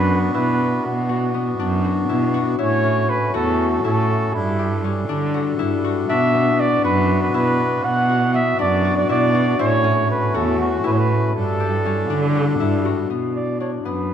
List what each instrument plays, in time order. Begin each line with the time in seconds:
Already playing: cello F#2, harp B3 D4 F#4, harmonium B3 D4 F#4, flugelhorn B4
0.22 flugelhorn B4
0.34 cello B2, harp E4, flugelhorn B4
0.84 cello B2, flugelhorn F#4
1.09 harp F#4
1.34 harp B3
1.59 cello F#2, harp D4
1.84 harp F#4
2.09 cello B2, harp E4
2.34 harp F#4
2.59 cello A2, harmonium A3 C#4 F#4, harp E4, flugelhorn C#5
2.84 harp C#4
3.10 flugelhorn B4
3.34 cello E2, harp F#4, flugelhorn A4
3.72 flugelhorn A4
3.84 cello A2, harp E4, flugelhorn A4
4.34 cello G2, harmonium G3 D4 A4, flugelhorn E4
4.59 harp G4
4.84 harp C#4
5.09 cello D3, harp D4
5.34 harp F#4
5.59 cello G2, harp E4
5.84 harp F#4
6.09 cello B2, harmonium B3 F#4, harp D4, flugelhorn E5
6.34 harp B3
6.60 flugelhorn D5
6.84 cello F#2, harp F#4, flugelhorn B4
7.23 flugelhorn B4
7.34 cello B2, harp E4, flugelhorn B4
7.84 cello B2, flugelhorn F#5
8.09 harp F#4
8.34 harp B3, flugelhorn E5
8.58 cello F#2, harp D4, flugelhorn D5
8.84 harp F#4
8.97 flugelhorn D5
9.09 cello B2, harp E4, flugelhorn D5
9.35 harp F#4
9.59 cello A2, harmonium A3 C#4, harp E4, flugelhorn C#5
9.84 harp C#4
10.10 flugelhorn B4
10.34 cello E2, harp F#4, flugelhorn A4
10.61 flugelhorn F#4
10.84 cello A2, harp E4, flugelhorn B4
10.93 flugelhorn C#5
10.98 flugelhorn B4
11.35 cello G2, harmonium G3 D4 A4, flugelhorn A4
11.60 harp G4
11.85 harp C#4
12.10 cello D3, harp D4
12.35 harp F#4
12.60 cello G2, harp E4
12.85 harp F#4
13.10 cello B2, harp B3
13.36 flugelhorn D5
13.60 harp D4, flugelhorn C#5
13.85 cello F#2, harp B3, flugelhorn B4